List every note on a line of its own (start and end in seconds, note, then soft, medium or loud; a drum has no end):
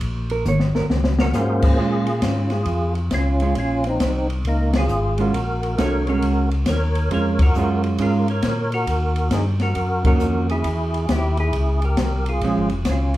0.01 0.45 A#1 medium
0.01 kick soft
0.01 ride medium
0.30 0.46 A#4 medium
0.30 ride medium
0.45 0.73 G#1 medium
0.45 0.75 C#5 medium
0.45 hi-hat pedal medium
0.45 mid tom soft
0.60 snare medium
0.74 0.82 G#1 soft
0.74 0.85 A#4 medium
0.74 snare medium
0.89 1.33 C#2 medium
0.89 snare medium
1.04 snare medium
1.19 1.62 F#4 medium
1.19 1.65 A#4 loud
1.19 snare medium
1.33 1.77 G#2 medium
1.33 1.79 A#3 medium
1.33 1.79 C#4 medium
1.33 1.64 F4 medium
1.33 1.62 G#4 medium
1.33 1.79 C5 medium
1.33 snare medium
1.33 hi-hat pedal medium
1.62 2.20 F4 medium
1.62 2.25 G#4 medium
1.62 kick medium
1.62 crash medium
1.78 2.21 A#2 medium
1.78 2.05 G#3 medium
1.78 2.06 C#4 medium
1.78 2.06 F4 medium
1.78 kick soft
2.07 ride soft
2.22 2.66 G#2 medium
2.22 2.51 C#4 medium
2.22 2.53 F4 medium
2.22 kick soft
2.22 snare medium
2.22 hi-hat pedal medium
2.22 ride medium
2.50 2.93 G#4 medium
2.50 snare soft
2.50 ride soft
2.54 2.95 F4 medium
2.65 3.10 F2 medium
2.65 kick soft
2.65 ride medium
2.95 ride soft
3.11 3.55 C#2 medium
3.11 3.55 C#4 medium
3.11 3.55 F4 medium
3.11 kick soft
3.11 snare medium
3.11 hi-hat pedal medium
3.11 ride medium
3.40 3.55 G#3 medium
3.40 3.56 C#4 medium
3.40 3.56 F4 medium
3.40 ride soft
3.55 3.99 A#1 medium
3.55 3.85 C#4 medium
3.55 kick soft
3.55 ride medium
3.60 3.88 F4 loud
3.84 4.27 C4 medium
3.84 ride medium
3.89 4.28 D#4 medium
4.00 4.43 C2 medium
4.00 kick soft
4.00 snare medium
4.00 hi-hat pedal medium
4.00 ride medium
4.30 ride soft
4.45 4.88 C#2 medium
4.45 4.73 A#3 medium
4.45 4.77 D#4 medium
4.45 kick soft
4.45 ride medium
4.73 5.17 F4 medium
4.73 snare medium
4.73 ride medium
4.78 5.22 G#4 medium
4.89 5.32 G#1 medium
4.89 hi-hat pedal medium
5.18 5.32 G#3 medium
5.18 5.33 C#4 medium
5.18 5.33 F4 medium
5.18 5.75 F#4 medium
5.18 5.80 A#4 medium
5.18 ride soft
5.34 5.77 A#1 medium
5.34 kick soft
5.34 ride medium
5.63 ride soft
5.78 6.21 C2 medium
5.78 6.04 A3 medium
5.78 6.04 D4 medium
5.78 6.05 F#4 medium
5.78 6.07 A#4 medium
5.78 6.09 C#5 loud
5.78 kick soft
5.78 snare medium
5.78 hi-hat pedal medium
5.78 ride medium
6.07 6.46 G#3 medium
6.07 6.46 C#4 medium
6.07 6.50 F#4 medium
6.07 6.49 A#4 medium
6.07 ride soft
6.22 6.65 C#2 medium
6.22 kick soft
6.22 ride medium
6.51 ride soft
6.66 7.09 D#2 medium
6.66 7.09 A#4 medium
6.66 7.12 C#5 loud
6.66 kick soft
6.66 snare medium
6.66 hi-hat pedal medium
6.66 ride medium
6.95 ride medium
7.10 7.54 F2 medium
7.10 7.37 G#3 medium
7.10 7.37 C#4 medium
7.10 7.37 F4 medium
7.10 7.40 A#4 medium
7.10 7.42 C#5 loud
7.10 kick soft
7.10 ride medium
7.39 7.83 F#4 medium
7.39 7.82 A#4 medium
7.39 kick medium
7.39 ride medium
7.55 7.98 F#2 medium
7.55 7.98 G#3 medium
7.55 7.99 C#4 medium
7.55 8.00 F4 medium
7.55 hi-hat pedal medium
7.84 ride soft
7.98 8.42 G#2 medium
7.98 8.25 G#3 medium
7.98 8.26 C#4 medium
7.98 8.26 F4 medium
7.98 8.28 F4 medium
7.98 8.30 A#4 medium
7.98 kick soft
7.98 ride medium
8.28 8.71 A#4 medium
8.28 8.70 C#5 loud
8.28 ride soft
8.42 8.86 A#2 medium
8.42 kick soft
8.42 snare medium
8.42 hi-hat pedal medium
8.42 ride medium
8.72 9.29 F#4 medium
8.72 9.35 A#4 medium
8.72 ride soft
8.87 9.30 D#2 medium
8.87 kick soft
8.87 ride medium
9.16 ride soft
9.30 9.74 G2 medium
9.30 9.46 D#4 medium
9.30 9.45 G#4 medium
9.30 kick soft
9.30 snare medium
9.30 hi-hat pedal medium
9.30 ride medium
9.60 10.03 F#4 medium
9.60 10.05 A#4 medium
9.60 snare soft
9.60 ride soft
9.75 10.19 F#2 medium
9.75 kick soft
9.75 ride medium
10.05 10.62 D#3 medium
10.05 10.62 A#3 medium
10.05 10.63 C#4 medium
10.05 10.63 F#4 medium
10.05 10.47 F#4 medium
10.05 10.47 A#4 medium
10.05 kick medium
10.05 ride medium
10.20 10.63 F2 medium
10.20 hi-hat pedal medium
10.49 11.06 E4 medium
10.49 11.11 G#4 medium
10.49 ride medium
10.64 11.07 E2 medium
10.64 kick soft
10.64 ride medium
10.94 ride soft
11.09 11.52 D#2 medium
11.09 11.37 E4 medium
11.09 11.38 G4 medium
11.09 kick soft
11.09 snare medium
11.09 hi-hat pedal medium
11.09 ride medium
11.37 11.80 E4 medium
11.37 11.84 G#4 medium
11.37 ride soft
11.53 11.96 C#2 medium
11.53 kick soft
11.53 ride medium
11.82 12.24 G4 medium
11.82 12.29 A#4 medium
11.82 ride soft
11.97 12.41 C2 medium
11.97 kick soft
11.97 snare medium
11.97 hi-hat pedal medium
11.97 ride medium
12.26 12.69 F4 medium
12.26 12.69 G#4 medium
12.26 ride soft
12.41 12.56 A#1 medium
12.41 12.69 F3 medium
12.41 12.69 G#3 medium
12.41 12.69 C#4 medium
12.41 kick soft
12.41 ride medium
12.56 12.71 G#1 medium
12.69 12.85 F1 medium
12.69 ride soft
12.85 13.17 C#2 medium
12.85 kick soft
12.85 snare medium
12.85 hi-hat pedal medium
12.85 ride medium
12.89 13.15 C#4 medium
12.89 13.17 F4 medium
13.14 ride soft